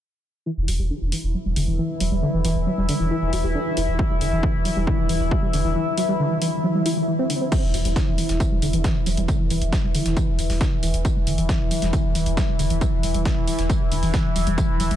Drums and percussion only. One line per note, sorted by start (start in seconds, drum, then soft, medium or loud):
0.68 open hi-hat loud
1.12 open hi-hat loud
1.56 open hi-hat loud
2.00 open hi-hat loud
2.45 open hi-hat loud
2.89 open hi-hat loud
3.33 open hi-hat loud
3.77 open hi-hat loud
3.99 kick loud
4.21 open hi-hat loud
4.43 kick loud
4.65 open hi-hat loud
4.87 kick loud
5.09 open hi-hat loud
5.31 kick loud
5.53 open hi-hat loud
5.98 open hi-hat loud
6.42 open hi-hat loud
6.86 open hi-hat loud
7.30 open hi-hat loud
7.52 kick loud
7.52 closed hi-hat medium
7.52 crash medium
7.52 tambourine medium
7.74 open hi-hat loud
7.74 tambourine medium
7.85 closed hi-hat medium
7.96 kick loud
7.96 snare loud
7.96 closed hi-hat medium
7.96 tambourine medium
8.18 open hi-hat loud
8.18 tambourine medium
8.29 snare soft
8.29 closed hi-hat medium
8.40 kick loud
8.40 closed hi-hat medium
8.40 tambourine medium
8.62 open hi-hat loud
8.62 tambourine medium
8.73 closed hi-hat medium
8.84 kick loud
8.84 snare loud
8.84 closed hi-hat medium
8.84 tambourine medium
9.06 open hi-hat loud
9.06 tambourine medium
9.17 closed hi-hat medium
9.28 kick loud
9.28 closed hi-hat medium
9.28 tambourine medium
9.50 open hi-hat loud
9.50 tambourine medium
9.62 closed hi-hat medium
9.73 kick loud
9.73 snare loud
9.73 closed hi-hat medium
9.73 tambourine medium
9.95 open hi-hat loud
9.95 tambourine medium
10.06 snare soft
10.06 closed hi-hat medium
10.17 kick loud
10.17 closed hi-hat medium
10.17 tambourine medium
10.39 open hi-hat loud
10.39 tambourine medium
10.50 snare soft
10.50 open hi-hat medium
10.61 kick loud
10.61 snare loud
10.61 closed hi-hat medium
10.61 tambourine medium
10.83 open hi-hat loud
10.83 tambourine medium
10.94 closed hi-hat medium
11.05 kick loud
11.05 closed hi-hat medium
11.05 tambourine medium
11.27 open hi-hat loud
11.27 tambourine medium
11.38 closed hi-hat medium
11.49 kick loud
11.49 snare loud
11.49 closed hi-hat medium
11.49 tambourine medium
11.71 open hi-hat loud
11.71 tambourine medium
11.82 snare soft
11.82 closed hi-hat medium
11.93 kick loud
11.93 closed hi-hat medium
11.93 tambourine medium
12.15 open hi-hat loud
12.15 tambourine medium
12.26 closed hi-hat medium
12.37 kick loud
12.37 snare loud
12.37 closed hi-hat medium
12.37 tambourine medium
12.59 open hi-hat loud
12.59 tambourine medium
12.70 closed hi-hat medium
12.81 kick loud
12.81 closed hi-hat medium
12.81 tambourine medium
13.03 open hi-hat loud
13.03 tambourine medium
13.14 closed hi-hat medium
13.25 kick loud
13.25 snare loud
13.25 closed hi-hat medium
13.25 tambourine medium
13.48 open hi-hat loud
13.48 tambourine medium
13.59 snare soft
13.59 closed hi-hat medium
13.70 kick loud
13.70 closed hi-hat medium
13.70 tambourine medium
13.92 open hi-hat loud
13.92 tambourine medium
14.03 open hi-hat medium
14.14 kick loud
14.14 snare loud
14.14 closed hi-hat medium
14.14 tambourine medium
14.36 open hi-hat loud
14.36 tambourine medium
14.47 closed hi-hat medium
14.58 kick loud
14.58 closed hi-hat medium
14.58 tambourine medium
14.80 open hi-hat loud
14.80 tambourine medium
14.91 closed hi-hat medium